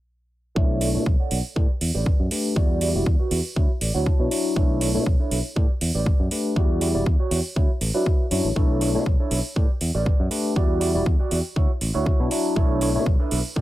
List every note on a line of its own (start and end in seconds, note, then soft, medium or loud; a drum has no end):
0.55 0.96 B1 medium
0.55 0.78 A3 medium
0.55 0.78 D4 medium
0.55 0.79 E4 medium
0.55 0.88 A4 loud
0.55 0.88 C#5 medium
0.55 0.79 C#5 medium
0.55 0.88 D5 medium
0.55 0.88 E5 loud
0.55 kick loud
0.81 0.91 A3 medium
0.81 0.91 D4 medium
0.81 0.91 E4 medium
0.81 0.91 C#5 medium
0.81 open hi-hat medium
0.94 1.02 B2 medium
0.94 1.03 A3 medium
0.94 1.03 D4 medium
0.94 1.03 E4 medium
0.94 1.04 C#5 medium
1.06 1.15 B1 medium
1.06 kick loud
1.19 1.38 A4 medium
1.19 1.38 C#5 medium
1.19 1.38 D5 medium
1.19 1.38 F#5 medium
1.31 1.40 B1 medium
1.31 open hi-hat loud
1.56 1.65 A2 medium
1.56 1.70 G4 medium
1.56 1.70 B4 medium
1.56 1.70 D5 medium
1.56 kick loud
1.81 1.90 E2 medium
1.81 muted clean electric guitar stroke soft
1.81 open hi-hat medium
1.94 2.11 A1 medium
1.94 2.25 G4 medium
1.94 2.25 B4 medium
1.94 2.26 D5 medium
2.06 kick loud
2.20 2.27 F#2 medium
2.31 2.53 A3 medium
2.31 2.54 D4 medium
2.31 2.54 G4 medium
2.31 2.54 B4 medium
2.31 open hi-hat loud
2.56 2.96 E2 medium
2.56 2.78 G3 medium
2.56 2.79 E4 medium
2.56 2.88 F#4 loud
2.56 2.79 F#4 medium
2.56 2.88 G4 medium
2.56 2.88 D5 loud
2.56 2.79 D5 loud
2.56 kick loud
2.81 2.91 G3 medium
2.81 2.92 E4 medium
2.81 2.92 F#4 medium
2.81 2.92 D5 medium
2.81 open hi-hat loud
2.95 3.02 E1 medium
2.95 3.04 G3 medium
2.95 3.04 E4 medium
2.95 3.04 F#4 medium
2.95 3.04 D5 medium
3.06 3.15 E2 medium
3.06 kick loud
3.19 3.38 F#4 medium
3.19 3.38 G4 medium
3.19 3.38 B4 medium
3.31 3.40 E2 medium
3.31 open hi-hat loud
3.56 3.65 D2 medium
3.56 3.70 E4 medium
3.56 3.70 F#4 medium
3.56 3.70 C#5 medium
3.56 kick loud
3.81 3.90 A1 medium
3.81 3.94 D5 medium
3.81 muted clean electric guitar stroke soft
3.81 open hi-hat loud
3.94 4.11 D2 medium
3.94 4.25 E4 medium
3.94 4.26 F#4 medium
3.94 4.26 C#5 medium
3.94 4.05 F#5 medium
4.06 kick loud
4.19 4.27 B2 medium
4.19 4.28 F#3 medium
4.19 4.29 D4 medium
4.19 4.29 E4 medium
4.19 4.29 C#5 loud
4.31 4.53 F#3 medium
4.31 4.53 D4 medium
4.31 4.54 E4 medium
4.31 4.54 C#5 medium
4.31 open hi-hat loud
4.56 4.96 B1 medium
4.56 4.78 A3 medium
4.56 4.88 D4 loud
4.56 4.79 E4 medium
4.56 4.88 E4 medium
4.56 4.88 A4 medium
4.56 4.79 C#5 medium
4.56 4.88 C#5 loud
4.56 kick loud
4.81 4.91 A3 medium
4.81 4.92 D4 medium
4.81 4.92 E4 medium
4.81 4.92 C#5 medium
4.81 open hi-hat loud
4.94 5.02 B2 medium
4.94 5.03 A3 medium
4.94 5.03 D4 medium
4.94 5.04 E4 medium
4.94 5.04 C#5 medium
5.06 5.15 B1 medium
5.06 kick loud
5.20 5.38 D4 medium
5.20 5.38 E4 medium
5.20 5.38 A4 medium
5.20 5.38 C#5 medium
5.31 5.40 B1 medium
5.31 open hi-hat loud
5.56 5.65 A2 medium
5.56 5.70 G4 medium
5.56 5.70 B4 medium
5.56 5.70 D5 medium
5.56 kick loud
5.81 5.90 E2 medium
5.81 muted clean electric guitar stroke soft
5.81 open hi-hat loud
5.95 6.11 A1 medium
5.95 6.25 G4 medium
5.95 6.26 B4 medium
5.95 6.26 D5 medium
6.06 kick loud
6.20 6.27 F#2 medium
6.31 6.53 A3 medium
6.31 6.54 D4 medium
6.31 6.54 G4 medium
6.31 6.54 B4 medium
6.31 open hi-hat loud
6.56 6.96 E2 medium
6.56 6.78 G3 medium
6.56 6.78 E4 medium
6.56 6.88 F#4 loud
6.56 6.79 F#4 medium
6.56 6.88 G4 medium
6.56 6.88 D5 loud
6.56 6.79 D5 medium
6.56 kick loud
6.81 6.91 G3 medium
6.81 6.91 E4 medium
6.81 6.92 F#4 medium
6.81 6.92 D5 medium
6.81 open hi-hat loud
6.94 7.02 E1 medium
6.94 7.03 G3 medium
6.94 7.03 E4 medium
6.94 7.04 F#4 medium
6.94 7.04 D5 medium
7.06 7.15 E2 medium
7.06 kick loud
7.19 7.38 F#4 medium
7.19 7.38 G4 medium
7.19 7.38 C#5 medium
7.31 7.40 E2 medium
7.31 open hi-hat loud
7.56 7.65 D2 medium
7.56 7.70 E4 medium
7.56 7.70 F#4 medium
7.56 7.70 C#5 medium
7.56 kick loud
7.81 7.90 A1 medium
7.81 muted clean electric guitar stroke soft
7.81 open hi-hat medium
7.94 8.09 F#3 medium
7.94 8.09 D4 medium
7.94 8.25 E4 medium
7.94 8.09 E4 medium
7.94 8.25 F#4 medium
7.94 8.25 B4 medium
7.94 8.09 D5 medium
8.06 kick loud
8.31 8.40 F#2 medium
8.31 8.47 F#3 medium
8.31 8.47 D4 medium
8.31 8.47 E4 medium
8.31 8.47 C#5 loud
8.31 open hi-hat loud
8.44 8.52 A1 medium
8.55 8.96 B1 medium
8.55 8.78 A3 medium
8.55 8.88 D4 loud
8.55 8.78 D4 medium
8.55 8.78 E4 medium
8.55 8.88 E4 medium
8.55 8.88 A4 medium
8.55 8.79 C#5 medium
8.55 8.88 C#5 loud
8.55 kick loud
8.81 8.91 A3 medium
8.81 8.91 D4 medium
8.81 8.92 E4 medium
8.81 8.92 C#5 medium
8.81 open hi-hat medium
8.94 9.02 B2 medium
8.94 9.03 A3 medium
8.94 9.04 D4 medium
8.94 9.04 E4 medium
8.94 9.04 C#5 medium
9.06 9.15 B1 medium
9.06 kick loud
9.19 9.38 D4 medium
9.19 9.38 E4 medium
9.19 9.38 A4 medium
9.19 9.38 C#5 medium
9.31 9.40 B1 medium
9.31 open hi-hat medium
9.56 9.65 A2 medium
9.56 9.70 G4 medium
9.56 9.70 B4 medium
9.56 9.70 D5 medium
9.56 kick loud
9.81 9.90 E2 medium
9.81 muted clean electric guitar stroke soft
9.81 open hi-hat loud
9.95 10.11 A1 medium
9.95 10.25 G4 medium
9.95 10.26 B4 medium
9.95 10.26 D5 medium
10.06 kick loud
10.20 10.27 F#2 loud
10.30 10.53 A3 medium
10.30 10.53 D4 medium
10.30 10.53 G4 medium
10.30 10.53 B4 medium
10.30 open hi-hat medium
10.56 10.96 E2 medium
10.56 10.78 G3 medium
10.56 10.78 E4 medium
10.56 10.88 F#4 loud
10.56 10.79 F#4 medium
10.56 10.88 G4 medium
10.56 10.88 D5 loud
10.56 10.79 D5 loud
10.56 kick loud
10.80 10.91 G3 medium
10.80 10.91 E4 medium
10.80 10.91 F#4 medium
10.80 10.92 D5 medium
10.80 open hi-hat medium
10.94 11.02 E1 medium
10.94 11.03 G3 medium
10.94 11.03 E4 medium
10.94 11.04 F#4 medium
10.94 11.04 D5 medium
11.06 11.15 E2 medium
11.06 kick loud
11.19 11.38 F#4 medium
11.19 11.38 G4 medium
11.19 11.38 D5 medium
11.31 11.40 E2 medium
11.31 open hi-hat medium
11.56 11.65 D2 medium
11.56 11.70 E4 medium
11.56 11.70 F#4 medium
11.56 11.70 C#5 medium
11.56 kick loud
11.81 11.90 A1 medium
11.81 muted clean electric guitar stroke soft
11.81 open hi-hat medium
11.94 12.11 D2 medium
11.94 12.25 E4 medium
11.94 12.25 F#4 medium
11.94 12.26 C#5 medium
12.06 kick loud
12.19 12.28 B2 loud
12.19 12.28 F#3 medium
12.19 12.29 D4 medium
12.19 12.29 E4 medium
12.19 12.29 C#5 loud
12.31 12.53 F#3 medium
12.31 12.53 D4 medium
12.31 12.54 E4 medium
12.31 12.54 C#5 medium
12.31 open hi-hat loud
12.56 12.97 B1 medium
12.56 12.78 A3 medium
12.56 12.88 D4 loud
12.56 12.79 D4 medium
12.56 12.79 E4 medium
12.56 12.88 E4 medium
12.56 12.88 A4 loud
12.56 12.88 C#5 loud
12.56 12.79 C#5 medium
12.56 kick loud
12.81 12.92 A3 medium
12.81 12.92 D4 medium
12.81 12.92 E4 medium
12.81 12.92 C#5 medium
12.81 open hi-hat medium
12.95 13.03 B2 medium
12.95 13.04 A3 medium
12.95 13.04 D4 medium
12.95 13.04 E4 medium
12.95 13.04 C#5 medium
13.06 13.15 B1 medium
13.06 kick loud
13.19 13.38 D4 medium
13.19 13.38 E4 medium
13.19 13.38 A4 medium
13.19 13.38 B4 medium
13.31 13.40 B1 medium
13.31 open hi-hat medium
13.56 13.61 A2 medium
13.56 13.61 G4 medium
13.56 13.61 B4 medium
13.56 13.61 D5 medium
13.56 kick loud